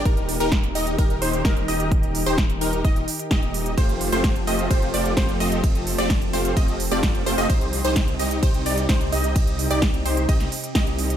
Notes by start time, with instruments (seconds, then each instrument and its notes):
0.05 detuned saw bass D#1, analog synth pad D#3 D#4 G4 A#4, supersaw synth D#4 G4 A#4, synth pluck A#4, kick, closed hi-hat
0.17 closed hi-hat
0.29 open hi-hat
0.40 detuned saw bass D#1, supersaw synth D#4 G4 A#4, synth pluck A#4, closed hi-hat
0.52 kick, snare, closed hi-hat
0.64 closed hi-hat
0.75 detuned saw bass D#1, supersaw synth D#4 G4 D#5, synth pluck D#5, open hi-hat
0.87 closed hi-hat
0.98 detuned saw bass D#1, supersaw synth D#4 G4 A#4, synth pluck A#4, kick, closed hi-hat
1.10 closed hi-hat
1.22 detuned saw bass D#1, supersaw synth D#4 G4 C5, synth pluck C5, open hi-hat
1.33 closed hi-hat
1.45 detuned saw bass D#1, supersaw synth D#4 G4 A#4, synth pluck A#4, kick, snare, closed hi-hat
1.57 closed hi-hat
1.68 detuned saw bass D#1, supersaw synth D#4 G4 D#5, synth pluck D#5, open hi-hat
1.80 closed hi-hat
1.92 kick, closed hi-hat
2.03 closed hi-hat
2.15 open hi-hat
2.26 detuned saw bass D#1, supersaw synth D#4 G4 C5, synth pluck C5, closed hi-hat
2.38 kick, snare, closed hi-hat
2.50 closed hi-hat
2.61 detuned saw bass D#1, supersaw synth D#4 G4 A#4, synth pluck A#4, open hi-hat
2.73 closed hi-hat
2.85 detuned saw bass D#1, supersaw synth D#4 G4 D#5, synth pluck D#5, kick, closed hi-hat
2.96 closed hi-hat
3.08 open hi-hat
3.19 closed hi-hat
3.31 detuned saw bass D#1, supersaw synth D#4 G4 D#5, synth pluck D#5, kick, snare, closed hi-hat
3.43 closed hi-hat
3.54 open hi-hat
3.66 closed hi-hat
3.78 detuned saw bass F1, analog synth pad F3 C4 A4, supersaw synth A3 C4 F4 G4 C5, synth pluck C5, kick, closed hi-hat, ride
3.89 closed hi-hat
4.01 open hi-hat
4.12 detuned saw bass F1, supersaw synth A3 C4 F4 G4 C5, synth pluck C5, closed hi-hat
4.24 kick, snare, closed hi-hat, ride
4.36 closed hi-hat
4.47 detuned saw bass F1, supersaw synth A3 C4 F4 G4 D#5, synth pluck D#5, open hi-hat
4.59 closed hi-hat
4.71 detuned saw bass F1, supersaw synth A3 C4 F4 G4 C5, synth pluck C5, kick, closed hi-hat, ride
4.82 closed hi-hat
4.94 detuned saw bass F1, supersaw synth A3 C4 F4 G4 D5, synth pluck D5, open hi-hat
5.05 closed hi-hat
5.17 detuned saw bass F1, supersaw synth A3 C4 F4 G4 C5, synth pluck C5, kick, snare, closed hi-hat, ride
5.29 closed hi-hat
5.40 detuned saw bass F1, supersaw synth A3 C4 F4 G4 D#5, synth pluck D#5, open hi-hat
5.52 closed hi-hat
5.64 kick, closed hi-hat, ride
5.75 closed hi-hat
5.87 open hi-hat
5.98 detuned saw bass F1, supersaw synth A3 C4 F4 G4 D5, synth pluck D5, closed hi-hat
6.10 kick, snare, closed hi-hat, ride
6.22 closed hi-hat
6.33 detuned saw bass F1, supersaw synth A3 C4 F4 G4 C5, synth pluck C5, open hi-hat
6.45 closed hi-hat
6.57 detuned saw bass F1, supersaw synth A3 C4 F4 D#5, synth pluck D#5, kick, closed hi-hat, ride
6.68 closed hi-hat
6.80 open hi-hat
6.92 detuned saw bass F1, supersaw synth A3 C4 F4 G4 D5, synth pluck D5, closed hi-hat
7.03 kick, snare, closed hi-hat, ride
7.15 closed hi-hat
7.26 detuned saw bass F1, supersaw synth A3 C4 F4 G4 C5, synth pluck C5, open hi-hat
7.38 detuned saw bass F1, supersaw synth A3 C4 F4 G4 D#5, synth pluck D#5, closed hi-hat
7.50 detuned saw bass C2, analog synth pad C3 D#4 G4, supersaw synth D#4 G4 C5, synth pluck C5, kick, closed hi-hat, ride
7.61 closed hi-hat
7.73 open hi-hat
7.85 detuned saw bass C2, supersaw synth D#4 G4 C5, synth pluck C5, closed hi-hat
7.96 kick, snare, closed hi-hat, ride
8.08 closed hi-hat
8.19 detuned saw bass C2, supersaw synth D#4 G4 D#5, synth pluck D#5, open hi-hat
8.31 closed hi-hat
8.43 detuned saw bass C2, supersaw synth D#4 G4 C5, synth pluck C5, kick, closed hi-hat, ride
8.54 closed hi-hat
8.66 detuned saw bass C2, supersaw synth D#4 G4 D5, synth pluck D5, open hi-hat
8.78 closed hi-hat
8.89 detuned saw bass C2, supersaw synth D#4 G4 C5, synth pluck C5, kick, snare, closed hi-hat, ride
9.01 closed hi-hat
9.12 detuned saw bass C2, supersaw synth D#4 G4 D#5, synth pluck D#5, open hi-hat
9.24 closed hi-hat
9.36 kick, closed hi-hat, ride
9.47 closed hi-hat
9.59 open hi-hat
9.71 detuned saw bass C2, supersaw synth D#4 G4 D5, synth pluck D5, closed hi-hat
9.82 kick, snare, closed hi-hat, ride
9.94 closed hi-hat
10.05 detuned saw bass C2, supersaw synth D#4 G4 C5, synth pluck C5, open hi-hat
10.17 closed hi-hat
10.29 detuned saw bass C2, supersaw synth D#4 G4 D#5, synth pluck D#5, kick, closed hi-hat, ride
10.40 snare, closed hi-hat
10.52 open hi-hat
10.64 closed hi-hat
10.75 detuned saw bass C2, supersaw synth D#4 G4 D#5, synth pluck D#5, kick, snare, closed hi-hat, ride
10.87 closed hi-hat
10.99 open hi-hat
11.10 closed hi-hat